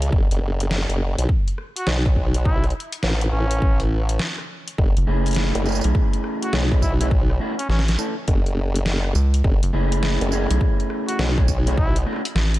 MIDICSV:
0, 0, Header, 1, 6, 480
1, 0, Start_track
1, 0, Key_signature, 3, "minor"
1, 0, Tempo, 582524
1, 102, Time_signature, 4, 2, 24, 8
1, 10377, End_track
2, 0, Start_track
2, 0, Title_t, "Trumpet"
2, 0, Program_c, 0, 56
2, 1462, Note_on_c, 0, 66, 89
2, 1557, Note_off_c, 0, 66, 0
2, 2019, Note_on_c, 0, 64, 92
2, 2181, Note_off_c, 0, 64, 0
2, 2739, Note_on_c, 0, 61, 93
2, 3134, Note_off_c, 0, 61, 0
2, 5294, Note_on_c, 0, 66, 88
2, 5394, Note_off_c, 0, 66, 0
2, 5619, Note_on_c, 0, 64, 90
2, 5719, Note_off_c, 0, 64, 0
2, 5772, Note_on_c, 0, 64, 75
2, 5829, Note_off_c, 0, 64, 0
2, 6248, Note_on_c, 0, 61, 86
2, 6307, Note_off_c, 0, 61, 0
2, 6343, Note_on_c, 0, 61, 74
2, 6441, Note_off_c, 0, 61, 0
2, 9131, Note_on_c, 0, 66, 94
2, 9232, Note_off_c, 0, 66, 0
2, 9706, Note_on_c, 0, 64, 92
2, 9864, Note_off_c, 0, 64, 0
2, 10377, End_track
3, 0, Start_track
3, 0, Title_t, "Clean electric guitar"
3, 0, Program_c, 1, 27
3, 4177, Note_on_c, 1, 57, 93
3, 4177, Note_on_c, 1, 61, 87
3, 4180, Note_on_c, 1, 68, 97
3, 4181, Note_on_c, 1, 64, 86
3, 4639, Note_off_c, 1, 57, 0
3, 4639, Note_off_c, 1, 61, 0
3, 4639, Note_off_c, 1, 64, 0
3, 4639, Note_off_c, 1, 68, 0
3, 4656, Note_on_c, 1, 57, 95
3, 4656, Note_on_c, 1, 61, 86
3, 4659, Note_on_c, 1, 68, 108
3, 4662, Note_on_c, 1, 64, 87
3, 5495, Note_off_c, 1, 64, 0
3, 5495, Note_off_c, 1, 68, 0
3, 5496, Note_off_c, 1, 61, 0
3, 5497, Note_off_c, 1, 57, 0
3, 5526, Note_on_c, 1, 57, 85
3, 5528, Note_on_c, 1, 61, 77
3, 5533, Note_on_c, 1, 68, 93
3, 5536, Note_on_c, 1, 64, 80
3, 5596, Note_off_c, 1, 61, 0
3, 5597, Note_off_c, 1, 57, 0
3, 5597, Note_off_c, 1, 64, 0
3, 5597, Note_off_c, 1, 68, 0
3, 5769, Note_on_c, 1, 57, 80
3, 5770, Note_on_c, 1, 61, 75
3, 5771, Note_on_c, 1, 68, 89
3, 5774, Note_on_c, 1, 64, 72
3, 5837, Note_off_c, 1, 61, 0
3, 5837, Note_off_c, 1, 64, 0
3, 5837, Note_off_c, 1, 68, 0
3, 5838, Note_off_c, 1, 57, 0
3, 6096, Note_on_c, 1, 57, 85
3, 6099, Note_on_c, 1, 61, 78
3, 6100, Note_on_c, 1, 66, 94
3, 6104, Note_on_c, 1, 64, 78
3, 6215, Note_off_c, 1, 57, 0
3, 6215, Note_off_c, 1, 66, 0
3, 6216, Note_off_c, 1, 61, 0
3, 6216, Note_off_c, 1, 64, 0
3, 6578, Note_on_c, 1, 57, 77
3, 6582, Note_on_c, 1, 61, 71
3, 6582, Note_on_c, 1, 64, 73
3, 6582, Note_on_c, 1, 69, 88
3, 6696, Note_off_c, 1, 57, 0
3, 6696, Note_off_c, 1, 64, 0
3, 6696, Note_off_c, 1, 69, 0
3, 6697, Note_off_c, 1, 61, 0
3, 8017, Note_on_c, 1, 57, 93
3, 8018, Note_on_c, 1, 61, 85
3, 8020, Note_on_c, 1, 68, 107
3, 8021, Note_on_c, 1, 64, 85
3, 8478, Note_off_c, 1, 64, 0
3, 8479, Note_off_c, 1, 61, 0
3, 8479, Note_off_c, 1, 68, 0
3, 8480, Note_off_c, 1, 57, 0
3, 8498, Note_on_c, 1, 57, 95
3, 8499, Note_on_c, 1, 61, 88
3, 8502, Note_on_c, 1, 68, 104
3, 8504, Note_on_c, 1, 64, 90
3, 9337, Note_off_c, 1, 57, 0
3, 9337, Note_off_c, 1, 61, 0
3, 9337, Note_off_c, 1, 68, 0
3, 9338, Note_off_c, 1, 64, 0
3, 9372, Note_on_c, 1, 57, 93
3, 9374, Note_on_c, 1, 61, 79
3, 9376, Note_on_c, 1, 68, 97
3, 9378, Note_on_c, 1, 64, 80
3, 9439, Note_off_c, 1, 57, 0
3, 9440, Note_off_c, 1, 61, 0
3, 9440, Note_off_c, 1, 64, 0
3, 9440, Note_off_c, 1, 68, 0
3, 9614, Note_on_c, 1, 57, 83
3, 9615, Note_on_c, 1, 61, 78
3, 9618, Note_on_c, 1, 68, 94
3, 9619, Note_on_c, 1, 64, 74
3, 9680, Note_off_c, 1, 57, 0
3, 9680, Note_off_c, 1, 61, 0
3, 9680, Note_off_c, 1, 64, 0
3, 9681, Note_off_c, 1, 68, 0
3, 9936, Note_on_c, 1, 57, 87
3, 9938, Note_on_c, 1, 61, 76
3, 9941, Note_on_c, 1, 66, 98
3, 9944, Note_on_c, 1, 64, 84
3, 10055, Note_off_c, 1, 57, 0
3, 10055, Note_off_c, 1, 61, 0
3, 10056, Note_off_c, 1, 64, 0
3, 10056, Note_off_c, 1, 66, 0
3, 10377, End_track
4, 0, Start_track
4, 0, Title_t, "Analog synth bass"
4, 0, Program_c, 2, 38
4, 4098, Note_on_c, 2, 30, 92
4, 4170, Note_off_c, 2, 30, 0
4, 4187, Note_on_c, 2, 30, 92
4, 4553, Note_off_c, 2, 30, 0
4, 4818, Note_on_c, 2, 35, 92
4, 4889, Note_off_c, 2, 35, 0
4, 6338, Note_on_c, 2, 33, 94
4, 6566, Note_off_c, 2, 33, 0
4, 7542, Note_on_c, 2, 37, 100
4, 7768, Note_off_c, 2, 37, 0
4, 7935, Note_on_c, 2, 30, 97
4, 8008, Note_off_c, 2, 30, 0
4, 8023, Note_on_c, 2, 30, 91
4, 8391, Note_off_c, 2, 30, 0
4, 8656, Note_on_c, 2, 35, 98
4, 8729, Note_off_c, 2, 35, 0
4, 10181, Note_on_c, 2, 33, 93
4, 10377, Note_off_c, 2, 33, 0
4, 10377, End_track
5, 0, Start_track
5, 0, Title_t, "Wobble bass"
5, 0, Program_c, 3, 39
5, 0, Note_on_c, 3, 37, 94
5, 88, Note_off_c, 3, 37, 0
5, 102, Note_on_c, 3, 30, 96
5, 231, Note_off_c, 3, 30, 0
5, 256, Note_on_c, 3, 30, 92
5, 328, Note_off_c, 3, 30, 0
5, 343, Note_on_c, 3, 30, 93
5, 711, Note_off_c, 3, 30, 0
5, 734, Note_on_c, 3, 30, 96
5, 950, Note_off_c, 3, 30, 0
5, 975, Note_on_c, 3, 35, 89
5, 1048, Note_off_c, 3, 35, 0
5, 1543, Note_on_c, 3, 35, 97
5, 2249, Note_off_c, 3, 35, 0
5, 2502, Note_on_c, 3, 33, 100
5, 2728, Note_off_c, 3, 33, 0
5, 2740, Note_on_c, 3, 33, 100
5, 2967, Note_off_c, 3, 33, 0
5, 2981, Note_on_c, 3, 33, 98
5, 3448, Note_off_c, 3, 33, 0
5, 3942, Note_on_c, 3, 30, 95
5, 4071, Note_off_c, 3, 30, 0
5, 4575, Note_on_c, 3, 30, 95
5, 4790, Note_off_c, 3, 30, 0
5, 5384, Note_on_c, 3, 35, 93
5, 6089, Note_off_c, 3, 35, 0
5, 6821, Note_on_c, 3, 30, 95
5, 7528, Note_off_c, 3, 30, 0
5, 7781, Note_on_c, 3, 30, 98
5, 7910, Note_off_c, 3, 30, 0
5, 8416, Note_on_c, 3, 30, 98
5, 8631, Note_off_c, 3, 30, 0
5, 9222, Note_on_c, 3, 35, 95
5, 9928, Note_off_c, 3, 35, 0
5, 10377, End_track
6, 0, Start_track
6, 0, Title_t, "Drums"
6, 16, Note_on_c, 9, 42, 65
6, 99, Note_off_c, 9, 42, 0
6, 103, Note_on_c, 9, 36, 124
6, 185, Note_off_c, 9, 36, 0
6, 257, Note_on_c, 9, 42, 54
6, 340, Note_off_c, 9, 42, 0
6, 497, Note_on_c, 9, 42, 66
6, 579, Note_off_c, 9, 42, 0
6, 584, Note_on_c, 9, 38, 120
6, 666, Note_off_c, 9, 38, 0
6, 739, Note_on_c, 9, 42, 51
6, 821, Note_off_c, 9, 42, 0
6, 976, Note_on_c, 9, 42, 70
6, 1059, Note_off_c, 9, 42, 0
6, 1062, Note_on_c, 9, 36, 109
6, 1145, Note_off_c, 9, 36, 0
6, 1217, Note_on_c, 9, 42, 36
6, 1299, Note_off_c, 9, 42, 0
6, 1302, Note_on_c, 9, 37, 50
6, 1385, Note_off_c, 9, 37, 0
6, 1454, Note_on_c, 9, 42, 62
6, 1536, Note_off_c, 9, 42, 0
6, 1538, Note_on_c, 9, 38, 122
6, 1621, Note_off_c, 9, 38, 0
6, 1696, Note_on_c, 9, 36, 109
6, 1778, Note_off_c, 9, 36, 0
6, 1782, Note_on_c, 9, 36, 61
6, 1864, Note_off_c, 9, 36, 0
6, 1931, Note_on_c, 9, 42, 63
6, 2014, Note_off_c, 9, 42, 0
6, 2022, Note_on_c, 9, 36, 123
6, 2104, Note_off_c, 9, 36, 0
6, 2173, Note_on_c, 9, 37, 51
6, 2173, Note_on_c, 9, 42, 23
6, 2228, Note_off_c, 9, 42, 0
6, 2228, Note_on_c, 9, 42, 31
6, 2255, Note_off_c, 9, 37, 0
6, 2309, Note_off_c, 9, 42, 0
6, 2309, Note_on_c, 9, 42, 40
6, 2391, Note_off_c, 9, 42, 0
6, 2410, Note_on_c, 9, 42, 67
6, 2492, Note_off_c, 9, 42, 0
6, 2495, Note_on_c, 9, 38, 123
6, 2577, Note_off_c, 9, 38, 0
6, 2648, Note_on_c, 9, 42, 51
6, 2731, Note_off_c, 9, 42, 0
6, 2736, Note_on_c, 9, 37, 36
6, 2818, Note_off_c, 9, 37, 0
6, 2890, Note_on_c, 9, 42, 66
6, 2973, Note_off_c, 9, 42, 0
6, 2982, Note_on_c, 9, 36, 110
6, 3065, Note_off_c, 9, 36, 0
6, 3129, Note_on_c, 9, 42, 35
6, 3212, Note_off_c, 9, 42, 0
6, 3371, Note_on_c, 9, 42, 61
6, 3454, Note_off_c, 9, 42, 0
6, 3456, Note_on_c, 9, 38, 114
6, 3539, Note_off_c, 9, 38, 0
6, 3611, Note_on_c, 9, 37, 46
6, 3693, Note_off_c, 9, 37, 0
6, 3853, Note_on_c, 9, 42, 63
6, 3935, Note_off_c, 9, 42, 0
6, 3942, Note_on_c, 9, 36, 122
6, 4024, Note_off_c, 9, 36, 0
6, 4093, Note_on_c, 9, 42, 50
6, 4175, Note_off_c, 9, 42, 0
6, 4335, Note_on_c, 9, 42, 28
6, 4340, Note_off_c, 9, 42, 0
6, 4340, Note_on_c, 9, 42, 37
6, 4349, Note_off_c, 9, 42, 0
6, 4349, Note_on_c, 9, 42, 33
6, 4376, Note_off_c, 9, 42, 0
6, 4376, Note_on_c, 9, 42, 44
6, 4391, Note_off_c, 9, 42, 0
6, 4391, Note_on_c, 9, 42, 47
6, 4405, Note_off_c, 9, 42, 0
6, 4405, Note_on_c, 9, 42, 52
6, 4420, Note_on_c, 9, 38, 110
6, 4488, Note_off_c, 9, 42, 0
6, 4502, Note_off_c, 9, 38, 0
6, 4574, Note_on_c, 9, 42, 49
6, 4656, Note_off_c, 9, 42, 0
6, 4660, Note_on_c, 9, 54, 29
6, 4685, Note_off_c, 9, 54, 0
6, 4685, Note_on_c, 9, 54, 32
6, 4713, Note_off_c, 9, 54, 0
6, 4713, Note_on_c, 9, 54, 39
6, 4739, Note_off_c, 9, 54, 0
6, 4739, Note_on_c, 9, 54, 43
6, 4742, Note_off_c, 9, 54, 0
6, 4742, Note_on_c, 9, 54, 47
6, 4789, Note_off_c, 9, 54, 0
6, 4789, Note_on_c, 9, 54, 52
6, 4814, Note_on_c, 9, 42, 63
6, 4871, Note_off_c, 9, 54, 0
6, 4896, Note_off_c, 9, 42, 0
6, 4902, Note_on_c, 9, 36, 106
6, 4984, Note_off_c, 9, 36, 0
6, 5055, Note_on_c, 9, 42, 34
6, 5137, Note_off_c, 9, 42, 0
6, 5141, Note_on_c, 9, 37, 49
6, 5224, Note_off_c, 9, 37, 0
6, 5294, Note_on_c, 9, 42, 59
6, 5377, Note_off_c, 9, 42, 0
6, 5381, Note_on_c, 9, 38, 112
6, 5463, Note_off_c, 9, 38, 0
6, 5535, Note_on_c, 9, 36, 104
6, 5617, Note_off_c, 9, 36, 0
6, 5621, Note_on_c, 9, 36, 59
6, 5622, Note_on_c, 9, 54, 66
6, 5703, Note_off_c, 9, 36, 0
6, 5704, Note_off_c, 9, 54, 0
6, 5773, Note_on_c, 9, 42, 63
6, 5856, Note_off_c, 9, 42, 0
6, 5860, Note_on_c, 9, 36, 116
6, 5943, Note_off_c, 9, 36, 0
6, 6015, Note_on_c, 9, 37, 52
6, 6098, Note_off_c, 9, 37, 0
6, 6256, Note_on_c, 9, 42, 61
6, 6338, Note_off_c, 9, 42, 0
6, 6341, Note_on_c, 9, 38, 50
6, 6419, Note_off_c, 9, 38, 0
6, 6419, Note_on_c, 9, 38, 68
6, 6496, Note_on_c, 9, 42, 48
6, 6502, Note_off_c, 9, 38, 0
6, 6502, Note_on_c, 9, 38, 83
6, 6579, Note_off_c, 9, 42, 0
6, 6581, Note_on_c, 9, 37, 37
6, 6581, Note_on_c, 9, 54, 62
6, 6584, Note_off_c, 9, 38, 0
6, 6663, Note_off_c, 9, 37, 0
6, 6663, Note_off_c, 9, 54, 0
6, 6820, Note_on_c, 9, 42, 61
6, 6821, Note_on_c, 9, 36, 101
6, 6902, Note_off_c, 9, 42, 0
6, 6903, Note_off_c, 9, 36, 0
6, 6974, Note_on_c, 9, 42, 34
6, 7056, Note_off_c, 9, 42, 0
6, 7215, Note_on_c, 9, 42, 60
6, 7297, Note_off_c, 9, 42, 0
6, 7299, Note_on_c, 9, 38, 118
6, 7381, Note_off_c, 9, 38, 0
6, 7453, Note_on_c, 9, 37, 51
6, 7535, Note_off_c, 9, 37, 0
6, 7540, Note_on_c, 9, 54, 68
6, 7622, Note_off_c, 9, 54, 0
6, 7695, Note_on_c, 9, 42, 61
6, 7778, Note_off_c, 9, 42, 0
6, 7781, Note_on_c, 9, 36, 115
6, 7864, Note_off_c, 9, 36, 0
6, 7934, Note_on_c, 9, 42, 52
6, 8016, Note_off_c, 9, 42, 0
6, 8175, Note_on_c, 9, 42, 66
6, 8257, Note_off_c, 9, 42, 0
6, 8263, Note_on_c, 9, 38, 108
6, 8345, Note_off_c, 9, 38, 0
6, 8416, Note_on_c, 9, 42, 49
6, 8498, Note_off_c, 9, 42, 0
6, 8503, Note_on_c, 9, 54, 62
6, 8585, Note_off_c, 9, 54, 0
6, 8657, Note_on_c, 9, 42, 66
6, 8739, Note_off_c, 9, 42, 0
6, 8741, Note_on_c, 9, 36, 101
6, 8824, Note_off_c, 9, 36, 0
6, 8898, Note_on_c, 9, 42, 33
6, 8981, Note_off_c, 9, 42, 0
6, 8982, Note_on_c, 9, 37, 52
6, 9064, Note_off_c, 9, 37, 0
6, 9134, Note_on_c, 9, 42, 60
6, 9217, Note_off_c, 9, 42, 0
6, 9222, Note_on_c, 9, 38, 112
6, 9304, Note_off_c, 9, 38, 0
6, 9375, Note_on_c, 9, 36, 100
6, 9458, Note_off_c, 9, 36, 0
6, 9461, Note_on_c, 9, 54, 69
6, 9463, Note_on_c, 9, 36, 60
6, 9543, Note_off_c, 9, 54, 0
6, 9545, Note_off_c, 9, 36, 0
6, 9616, Note_on_c, 9, 42, 59
6, 9699, Note_off_c, 9, 42, 0
6, 9703, Note_on_c, 9, 36, 115
6, 9785, Note_off_c, 9, 36, 0
6, 9855, Note_on_c, 9, 37, 25
6, 9855, Note_on_c, 9, 42, 55
6, 9863, Note_off_c, 9, 37, 0
6, 9863, Note_on_c, 9, 37, 30
6, 9912, Note_off_c, 9, 37, 0
6, 9912, Note_on_c, 9, 37, 34
6, 9938, Note_off_c, 9, 42, 0
6, 9941, Note_off_c, 9, 37, 0
6, 9941, Note_on_c, 9, 37, 41
6, 9993, Note_off_c, 9, 37, 0
6, 9993, Note_on_c, 9, 37, 44
6, 10021, Note_off_c, 9, 37, 0
6, 10021, Note_on_c, 9, 37, 49
6, 10096, Note_on_c, 9, 42, 67
6, 10104, Note_off_c, 9, 37, 0
6, 10179, Note_off_c, 9, 42, 0
6, 10183, Note_on_c, 9, 38, 109
6, 10265, Note_off_c, 9, 38, 0
6, 10336, Note_on_c, 9, 42, 51
6, 10377, Note_off_c, 9, 42, 0
6, 10377, End_track
0, 0, End_of_file